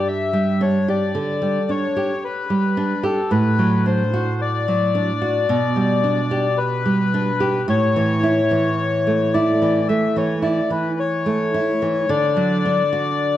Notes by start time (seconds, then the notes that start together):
Already playing: G2 G4
0.08 E5
0.33 G3
0.61 D4 C#5
0.88 G4 D5
1.15 D3
1.42 G3
1.69 D4 C#5
1.97 G4
2.24 B4
2.50 G3
2.77 D4
3.03 G4 A4
3.31 A2 B4
3.59 F#3
3.86 D4 C5
4.14 F#4
4.41 D5
4.68 F#3
4.95 D4
5.22 F#4
5.49 B2
5.76 G3
6.04 D4
6.31 G4
6.58 B4
6.86 G3
7.14 D4
7.40 G4
7.68 A2 C#5
7.96 E3
8.23 E4
8.51 E3
9.07 A3
9.34 E4 D5
9.62 E3
9.88 A3 E5
10.16 E3 C#5
10.42 E4 D5
10.70 E3 B4
10.99 C#5
11.26 A3
11.54 E4
11.82 E3
12.09 D3 D5
12.36 F#3
12.65 D4
12.93 F#4